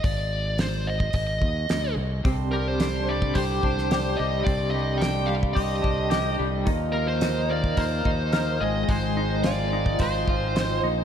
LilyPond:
<<
  \new Staff \with { instrumentName = "Lead electric guitar" } { \time 4/4 \key c \minor \tempo 4 = 108 d''4 c''8 ees''8 ees''4. r8 | r8 bes'16 c''8. d''8 c''4. ees''8 | d''8 ees''8 g''8 f''8 ees''4. r8 | r8 bes'16 c''8. d''8 c''4. ees''8 |
c''4 d''4 c''4. r8 | }
  \new Staff \with { instrumentName = "Clean electric guitar" } { \time 4/4 \key c \minor r1 | c8 g8 d'8 g8 g'8 d'8 g'8 g8 | c8 g8 d'8 g8 g'8 d'8 g'8 g8 | ees8 bes8 ees'8 bes8 bes'8 ees'8 bes'8 aes8 |
aes8 ees'8 f'8 ees'8 c''8 f'8 c''8 ees'8 | }
  \new Staff \with { instrumentName = "Harmonium" } { \time 4/4 \key c \minor r1 | <d c''>1~ | <d c''>1 | <bes bes'>2.~ <bes bes'>8 <c' aes'>8~ |
<c' aes'>1 | }
  \new Staff \with { instrumentName = "Harmonium" } { \clef bass \time 4/4 \key c \minor r1 | g1~ | g1 | <f ees'>1~ |
<f ees'>1 | }
  \new Staff \with { instrumentName = "Fingered electric bass" } { \clef bass \time 4/4 \key c \minor aes,,2 aes,,8 ees,8 d,8 c,8 | c,2 c,8 c,4 c,8 | c,2 c,8 c,4 c,8 | ees,2 ees,8 ees,4 aes,,8 |
aes,,2 aes,,8 aes,,4 bes,,8 | }
  \new DrumStaff \with { instrumentName = "Drums" } \drummode { \time 4/4 <hho bd>4 <hho sn>8. bd16 <hho bd>8 bd8 <hho sn>4 | <hho bd>4 <hho sn>8. bd16 <hho bd>8 bd16 sn16 <hho sn>4 | <hho bd>4 <hho sn>8. bd16 <hho bd>8 bd8 <hho sn>4 | <hho bd>4 <hho sn>8. bd16 <hho bd>8 bd8 <hho sn>4 |
<hho bd>4 <hho sn>8. bd16 <hho bd>8 bd8 <hho sn>4 | }
>>